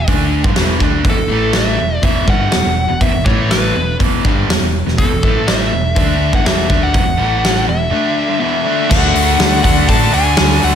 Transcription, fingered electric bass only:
0.08 D2
0.45 G1
0.57 E1
0.81 D2
1.05 E1
1.18 E1
1.31 A1
1.81 E1
2.03 E1
2.28 G1
2.55 E1
2.65 E1
2.91 E1
3.01 E1
3.15 E1
3.26 A1
3.76 E1
4.00 E1
4.25 G1
4.48 E1
4.61 E1
4.86 E1
4.99 E1
5.11 E1
5.24 A1
5.72 E1
5.97 D2
6.33 G1
6.45 E1
6.70 D2
6.94 E1
7.06 E1
7.19 A1
7.67 E1
8.92 D2
9.16 D2
9.40 D2
9.65 D2
9.89 A2
10.13 D2
10.39 D2
10.63 D2

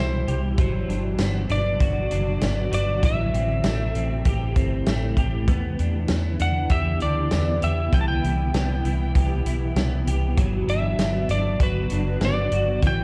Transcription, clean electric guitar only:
Already playing: E3 B3 E4 G4
0.28 G4
0.58 F#3
0.89 D4
1.19 B3
1.50 D4
1.80 F#4
2.11 D4
2.42 B3
2.72 F#4
3.03 E3
3.34 C4
3.64 A3
3.96 C4
4.26 G4
4.56 C4
4.87 A3
5.18 G4
5.48 B3
5.79 D4
6.10 B3
6.40 D4
6.70 G4
7.01 D4
7.32 B3
7.62 G4
7.93 E3
8.23 E4
8.55 B3
8.85 E4
9.15 G4
9.46 E4
9.77 B3
10.07 G4
10.38 F#3
10.69 D4
11.00 B3
11.31 D4
11.61 F#4
11.92 D4
12.22 B3
12.53 F#4
12.84 E3

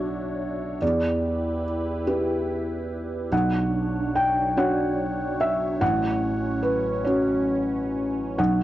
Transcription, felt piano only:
Already playing: B1 D4 F#4 C#5 E5 F#5
0.81 E2 D5
2.07 E4 G4 B4
3.32 B1 F#5
4.15 G5
4.57 D4 F#4 C#5 F#5
5.41 E5
5.81 A1 F#5
6.63 B4
7.05 C#4 F#4 C#5
8.38 B1 F#5

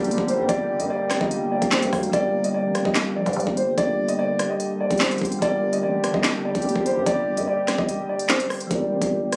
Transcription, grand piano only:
Already playing: D5
0.28 C5
0.49 D5
0.80 D#5
0.90 D5
1.21 D#5
1.52 D5
1.72 C5
2.13 D5
2.44 D#5
2.54 D5
2.85 D#5
3.16 D5
3.57 C5
3.78 D5
4.09 D#5
4.19 D5
4.50 D#5
4.80 D5
5.01 C5
5.42 D5
5.73 D#5
5.83 D5
6.14 D#5
6.45 D5
6.86 C5
7.06 D5
7.37 D#5
7.47 D5
7.78 D#5
8.09 D5
8.30 C5

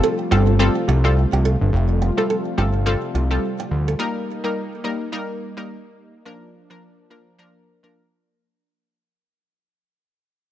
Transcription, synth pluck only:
0.31 G3 C4 F4 A4
0.59 G3 C4 F4 A4
1.04 G3 C4 F4 A4
2.17 G3 C4 F4 A4
2.58 G3 C4 F4 A4
2.86 G3 C4 F4 A4
3.31 G3 C4 F4 A4
3.99 G3 A#3 D#4 A#4
4.44 G3 A#3 D#4 A#4
4.84 G3 A#3 D#4 A#4
5.12 G3 A#3 D#4 A#4
5.57 G3 A#3 D#4 A#4
6.25 F3 A#3 D4 A#4
6.70 F3 A#3 D4 A#4
7.10 F3 A#3 D4 A#4
7.38 F3 A#3 D4 A#4
7.83 F3 A#3 D4 A#4

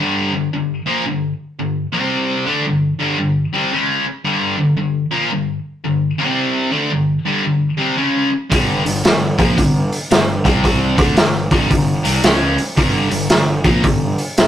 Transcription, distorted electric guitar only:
0.00 G2 D3 G3
0.33 G2 D3
0.53 G2 D3
0.86 A#2 F3 A#3
1.06 G2 D3
1.59 G2 D3
1.92 C3 G3 C4
2.46 D3 A3 D4
2.66 G2 D3
3.00 G2 D3 G3
3.18 G2 D3
3.53 C3 G3 C4
3.72 C#3 G#3 C#4
4.06 muted distorted electric guitar stroke
4.25 G2 D3 G3
4.57 G2 D3
4.77 G2 D3
5.11 A#2 F3 A#3
5.31 G2 D3
5.84 G2 D3
6.18 C3 G3 C4
6.71 D3 A3 D4
6.91 G2 D3
7.26 G2 D3 G3
7.44 G2 D3
7.78 C3 G3 C4
7.97 C#3 G#3 C#4
8.32 muted distorted electric guitar stroke
8.50 G2 D3 G3
8.85 G2 D3
9.04 G2 D3
9.38 A#2 F3 A#3
9.57 G2 D3
10.11 G2 D3
10.44 C3 G3 C4
10.97 D3 A3 D4
11.17 G2 D3
11.51 G2 D3 G3
11.70 G2 D3
12.03 C3 G3 C4
12.23 C#3 G#3 C#4
12.58 muted distorted electric guitar stroke
12.76 G2 D3 G3
13.11 G2 D3
13.31 G2 D3
13.64 A#2 F3 A#3
13.84 G2 D3
14.38 G2 D3

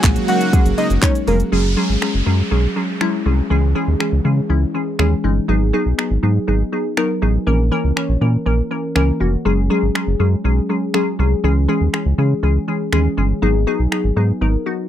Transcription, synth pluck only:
0.04 F#3 G#3 A#3 C#4 G#4
0.28 F#3 G#3 A#3 C#4 D#4
0.53 F#3 G#3 A#3 C#4 G#4
0.78 F#3 G#3 A#3 C#4 G#4
1.02 F#3 G#3 A#3 C#4 D#4
1.27 F#3 G#3 A#3 C#4 G#4
1.52 F#3 G#3 C#4 G#4
1.77 F#3 G#3 C#4 G#4
2.02 F#3 G#3 C#4 G#4
2.26 F#3 G#3 C#4 G#4
2.51 F#3 G#3 C#4 G#4
2.76 F#3 G#3 C#4 G#4
3.01 F#3 G#3 C#4 E4
3.26 F#3 G#3 C#4 G#4
3.50 E3 G#3 C#4 G#4
3.75 E3 G#3 C#4 G#4
4.00 E3 G#3 C#4 G#4
4.25 E3 G#3 C#4 G#4
4.49 E3 G#3 C#4 E4
4.74 E3 G#3 C#4 G#4
4.99 E3 G#3 C#4 G#4
5.24 E3 G#3 C#4 D#4
5.48 F#3 B3 D#4 G#4
5.73 F#3 B3 D#4 G#4
5.98 F#3 B3 D#4 G#4
6.23 F#3 B3 D#4 G#4
6.48 F#3 B3 D#4 G#4
6.72 F#3 B3 D#4 G#4
6.97 F#3 B3 D#4 A#4
7.22 F#3 B3 D#4 G#4
7.47 E3 A#3 C#4 A#4
7.71 E3 A#3 C#4 A#4
7.96 E3 A#3 C#4 C#5
8.21 E3 A#3 C#4 A#4
8.46 E3 A#3 C#4 A#4
8.71 E3 A#3 C#4 A#4
8.95 E3 A#3 C#4 A#4
9.20 E3 A#3 C#4 F#4
9.45 F#3 G#3 C#4 G#4
9.70 F#3 G#3 C#4 G#4
9.95 F#3 G#3 C#4 G#4
10.20 F#3 G#3 C#4 G#4
10.44 F#3 G#3 C#4 G#4
10.69 F#3 G#3 C#4 G#4
10.94 F#3 G#3 C#4 G#4
11.19 F#3 G#3 C#4 G#4
11.44 E3 G#3 C#4 G#4
11.68 E3 G#3 C#4 G#4
11.93 E3 G#3 C#4 G#4
12.18 E3 G#3 C#4 G#4
12.43 E3 G#3 C#4 G#4
12.68 E3 G#3 C#4 G#4
12.93 E3 G#3 C#4 G#4
13.17 E3 G#3 C#4 G#4
13.42 F#3 B3 D#4 G#4
13.67 F#3 B3 D#4 G#4
13.92 F#3 B3 D#4 G#4
14.16 F#3 B3 D#4 G#4
14.41 F#3 B3 D#4 A#4
14.66 F#3 B3 D#4 F#4

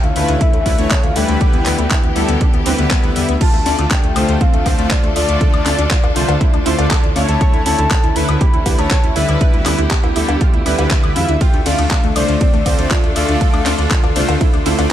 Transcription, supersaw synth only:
0.16 D3 A3 E4 B4
0.66 D3 A3 E4 B4
0.79 D3 A3 E4 C#5
1.16 D3 G3 E4 B4
1.66 D3 G3 E4 B4
2.16 D3 G3 E4 A4
2.66 D3 G3 E4 B4
2.79 D3 G3 E4 B4
3.16 G3 E4 E5
3.66 D3 A3 F4 D5
4.16 D3 A3 F4 C5
4.66 D3 A3 F4 C5
4.79 D3 A3 F4 D5
5.16 D3 A3 F4 D5
5.66 D3 A3 F4 D5
6.16 D3 A3 F4 C5
6.66 D3 A3 F4 C5
6.79 D3 A3 F4 D5
7.16 D3 A3 E4 C#5
7.66 D3 A3 E4 C#5
8.16 D3 A3 E4 B4
8.66 D3 A3 E4 B4
8.79 D3 A3 E4 C#5
9.16 D3 G3 E4 B4
9.66 D3 G3 E4 B4
10.16 D3 G3 E4 A4
10.66 D3 G3 E4 B4
10.79 D3 G3 E4 B4
11.16 G3 E4 E5
11.66 D3 A3 F4 D5
12.16 D3 A3 F4 C5
12.66 D3 A3 F4 C5
12.79 D3 A3 F4 D5
13.16 D3 A3 F4 D5
13.66 D3 A3 F4 D5
14.16 D3 A3 F4 C5
14.66 D3 A3 F4 C5
14.79 D3 A3 F4 D5

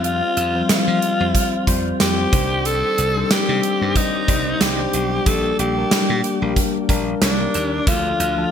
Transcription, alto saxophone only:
0.05 F4
0.71 F4
2.01 G4
2.66 A4
3.31 G4
3.97 D#4
4.62 G4
5.27 A4
5.60 G4
7.23 D4
7.88 F4

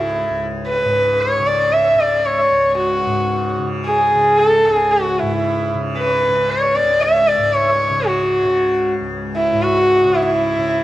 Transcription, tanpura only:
Already playing: C#2 G#2 C#3
0.30 C#2
0.84 G#2
1.39 C#3
1.96 C#3
2.51 C#2
3.06 G#2
3.59 C#3
4.15 C#3
4.67 C#2
5.22 G#2
5.75 C#3
6.29 C#3
6.83 C#2
7.38 G#2
7.90 C#3
8.44 C#3
9.01 C#2
9.52 G#2
10.05 C#3
10.59 C#3

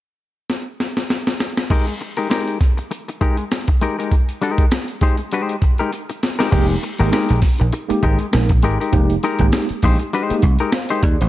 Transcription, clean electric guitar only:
1.71 G#3 D#4 G4 A#4
1.88 muted clean electric guitar stroke
2.01 muted clean electric guitar stroke
2.17 G#3 D#4 G4 A#4
2.30 G#3 D#4 G4 A#4
2.60 muted clean electric guitar stroke
2.77 muted clean electric guitar stroke
2.91 muted clean electric guitar stroke
3.08 muted clean electric guitar stroke
3.21 G#3 D#4 G4 A#4
3.39 muted clean electric guitar stroke
3.52 muted clean electric guitar stroke
3.68 muted clean electric guitar stroke
3.81 G#3 D#4 G4 A#4
3.99 G#3 D#4 G4 A#4
4.42 G#3 D#4 G4 A#4
4.72 muted clean electric guitar stroke
5.02 G#3 D#4 G4 C5
5.18 muted clean electric guitar stroke
5.33 G#3 D#4 G4 C5
5.63 muted clean electric guitar stroke
5.79 G#3 D#4 G4 A#4
5.93 muted clean electric guitar stroke
6.10 muted clean electric guitar stroke
6.39 G#3 D#4 G4 A#4
6.51 G#3 D#4 G4 A#4
6.69 muted clean electric guitar stroke
6.83 muted clean electric guitar stroke
7.00 G#3 D#4 G4 A#4
7.12 G#3 D#4 G4 A#4
7.42 muted clean electric guitar stroke
7.60 muted clean electric guitar stroke
7.73 muted clean electric guitar stroke
7.90 muted clean electric guitar stroke
8.03 G#3 D#4 G4 A#4
8.20 muted clean electric guitar stroke
8.33 muted clean electric guitar stroke
8.51 muted clean electric guitar stroke
8.63 G#3 D#4 G4 A#4
8.80 G#3 D#4 G4 A#4
9.24 G#3 D#4 G4 A#4
9.54 muted clean electric guitar stroke
9.84 G#3 D#4 G4 C5
10.00 muted clean electric guitar stroke
10.13 G#3 D#4 G4 C5
10.44 muted clean electric guitar stroke
10.60 G#3 D#4 G4 A#4
10.90 G#3 D#4 G4 C5
11.22 muted clean electric guitar stroke

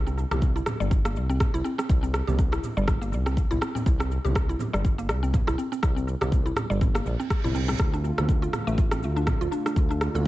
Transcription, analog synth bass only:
Already playing: C2
0.31 C2
0.80 G1
1.16 C2
1.54 C2
1.90 C2
2.28 C2
2.77 G1
3.12 C2
3.51 C2
3.86 C2
4.25 C2
4.74 G1
5.09 C2
5.48 C2
5.83 C2
6.22 C2
6.71 G1
7.06 A#1
7.44 C2
7.80 D2
8.18 D2
8.67 A1
9.02 D2
9.41 D2
9.76 D2
10.15 D2

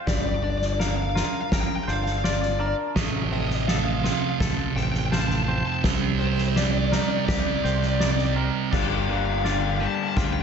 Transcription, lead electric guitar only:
0.07 D5
0.14 D5
0.21 D5
0.27 D5
0.35 D5
0.43 D5
0.50 D5
0.58 D5
0.66 D5
0.73 D5
0.80 F5
0.88 F5
0.95 F5
1.02 F5
1.10 F5
1.18 F5
1.25 F5
1.33 F5
1.41 F5
1.54 G5
1.61 G5
1.67 G5
1.76 G5
1.84 G5
1.89 F5
1.96 F5
2.04 F5
2.12 F5
2.18 F5
2.25 D5
2.33 D5
2.42 D5
2.50 D5
2.59 D5
2.66 D5
3.33 D#5
3.41 D#5
3.48 D#5
3.55 D#5
3.62 D#5
3.68 F5
3.75 F5
3.84 F5
3.91 F5
4.00 F5
4.06 F5
4.13 F5
4.21 F5
4.29 F5
4.76 G5
4.83 G5
4.92 G5
4.99 G5
5.06 G5
5.12 A5
5.19 A5
5.28 A5
5.36 A5
5.43 A5
5.50 A5
5.58 A5
5.66 A5
5.73 A5
6.19 C5
6.27 C5
6.33 C5
6.42 C5
6.48 C5
6.56 D5
6.64 D5
6.71 D5
6.78 D5
6.85 D5
6.93 D5
7.02 D5
7.10 D5
7.17 D5
7.25 D5
7.32 D5
7.41 D5
7.47 D5
7.56 D5
7.64 D5
7.72 D5
7.78 D5
7.87 D5
7.95 D5
8.03 D5
8.10 D5
8.17 D5
8.24 D5
8.72 F5
8.80 F5
8.88 F5
8.95 F5
9.02 F5
9.10 F5
9.16 F5
9.25 F5
9.33 F5
9.39 F5
9.47 F5
9.54 F5
9.61 F5
9.69 F5
9.77 F5 A5
9.88 A5
9.95 A5
10.03 A5
10.09 A5
10.17 G5
10.25 G5
10.33 G5

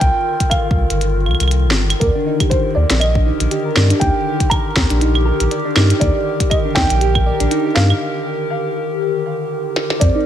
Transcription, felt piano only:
0.00 G5
0.50 F5
2.00 A#4
2.50 C5
2.75 D5
3.00 D#5
4.00 G5
4.50 A#5
6.00 D5
6.50 D#5
6.75 G5
7.75 F5
10.00 D5

